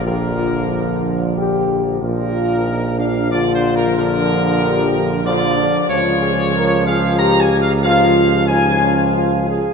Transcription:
X:1
M:3/4
L:1/8
Q:1/4=93
K:Bb
V:1 name="Trumpet section"
B4- B z | B3 f (3d c B | B4 d2 | _d3 f (3b _a f |
f2 _a2 z2 |]
V:2 name="French horn section"
G F D2 G2 | F2 E D F2- | F2 G2 F D | F _A B A G2 |
F2 E _D F _A |]
V:3 name="Trombone section" clef=bass
[D,F,]6 | [B,,F,]4 [D,F,]2 | [D,F,]4 [D,F,]2 | F,6 |
F,2 F,4 |]
V:4 name="Tuba" clef=bass
B,,,6 | B,,,6- | B,,,6 | _D,,6- |
_D,,6 |]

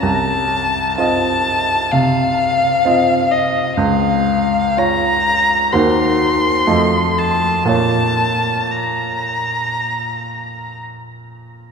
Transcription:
X:1
M:4/4
L:1/8
Q:1/4=61
K:Bbm
V:1 name="Violin"
=a2 a2 f3 e | f2 b2 c'3 =a | =a2 b4 z2 |]
V:2 name="Grand piano"
C,,2 [CFe]2 C,2 [CFe]2 | D,,2 [Fd]2 [E,,B,Gc]2 [F,,=A,Fe]2 | [B,,B,Fd]8 |]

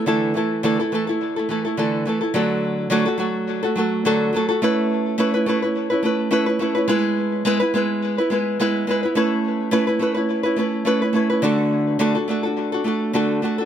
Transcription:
X:1
M:4/4
L:1/16
Q:"Swing 16ths" 1/4=106
K:Dlyd
V:1 name="Nylon-string guitar"
[D,E,A,EA]2 [E,A,EA]2 [D,E,A,EA] [A,EA] [E,A,EA] [A,EA]2 [A,EA] [E,A,EA] [A,EA] [D,E,A,EA]2 [E,A,EA] [A,EA] | [D,F,A,FA]4 [D,F,A,FA] [A,FA] [F,A,FA]3 [A,FA] [F,A,FA]2 [D,F,A,FA]2 [F,A,FA] [A,FA] | [A,CEB]4 [A,CEB] [CEB] [A,CEB] [CEB]2 [CEB] [A,CEB]2 [A,CEB] [CEB] [A,CEB] [CEB] | [G,B,EB]4 [G,B,EB] [B,EB] [G,B,EB]3 [B,EB] [G,B,EB]2 [G,B,EB]2 [G,B,EB] [B,EB] |
[A,CEB]4 [A,CEB] [CEB] [A,CEB] [CEB]2 [CEB] [A,CEB]2 [A,CEB] [CEB] [A,CEB] [CEB] | [D,A,DFA]4 [D,A,DFA] [DFA] [A,DFA] [DFA]2 [DFA] [A,DFA]2 [D,A,DFA]2 [A,DFA] [DFA] |]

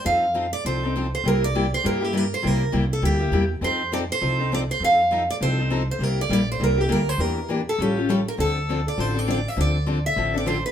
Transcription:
X:1
M:4/4
L:1/8
Q:"Swing" 1/4=202
K:Cmix
V:1 name="Steel-string acoustic guitar"
f3 d c3 c | B d2 c B G B c | B2 z A G3 z | c2 d c3 d c |
f3 d c3 c | B d d c B G B c | B2 z A G2 A B | A3 d c d d e |
d3 e2 d c =B |]
V:2 name="Steel-string acoustic guitar"
[F,C_EA] z [F,CEA] z [F,CEA] [CEA] [F,CEA] z | [C,G,B,EG] z [C,G,B,EG] z [C,G,B,EG] [B,EG] [C,G,B,EG] z | [C,G,B,EG] z [C,G,B,EG] z [C,G,B,EG] [B,EG] [C,G,B,EG] z | [F,C_EA] z [F,CEA] z [F,CEA] [CEA] [F,CEA] z |
[F,C_EA] z [F,CEA] z [F,CEA] [CEA] [F,CEA] z | [C,G,B,EG] z [C,G,B,EG] z [C,G,B,EG] [B,EG] [C,G,B,EG] z | [E,B,DG] z [E,B,DG] z [^E,G,^C^EA] [CEA] [E,G,CEA] z | [D,F,CDA] z [D,F,CDA] z [D,F,CDA] [CDA] [D,F,CDA] z |
[D,F,CDA] z [D,F,CDA] z [D,F,CDA] [CDA] [D,F,CDA] z |]
V:3 name="Upright bass" clef=bass
F,,4 C,,4 | C,,4 G,,4 | C,,2 C,,2 D,,2 E,,2 | F,,4 C,,4 |
F,,4 C,,4 | C,,2 B,,,2 C,,2 D,,2 | E,,4 A,,,4 | D,,4 A,,,4 |
D,,4 A,,,4 |]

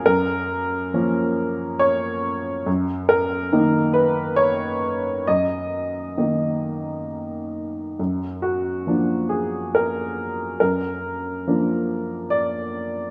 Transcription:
X:1
M:3/4
L:1/8
Q:1/4=69
K:F#
V:1 name="Upright piano"
A4 c2 | z A2 B c2 | d4 z2 | z F2 G A2 |
A4 =d2 |]
V:2 name="Upright piano" clef=bass
F,,2 [E,A,C]4 | F,,2 [D,A,D]4 | F,,2 [D,A,D]4 | F,,2 [E,A,=D]4 |
F,,2 [E,A,=D]4 |]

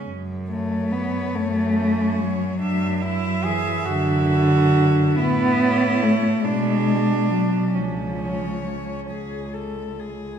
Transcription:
X:1
M:6/8
L:1/16
Q:3/8=46
K:F#m
V:1 name="Cello"
z2 c6 c4 | e2 e6 e4 | z2 c4 d2 d4 | z2 c4 G2 A2 G2 |]
V:2 name="Cello"
z6 C6 | D2 E2 G2 F6 | E6 D6 | C8- C z3 |]
V:3 name="Cello" clef=bass
z2 A,2 B,2 A,4 F,2- | F,4 E,2 D,6 | B,4 A,2 G,4 F,2 | ^E,6 z6 |]
V:4 name="Cello" clef=bass
F,,6 F,,6 | F,,6 F,,6 | A,,6 B,,6 | C,,6 C,,6 |]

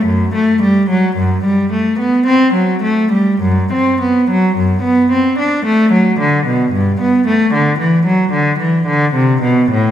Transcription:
X:1
M:3/4
L:1/16
Q:1/4=54
K:G
V:1 name="Cello" clef=bass
F,, A, G, F, F,, G, A, B, C F, A, G, | F,, C B, F, F,, B, C D A, F, D, B,, | G,, B, A, D, E, F, D, E, D, C, B,, A,, |]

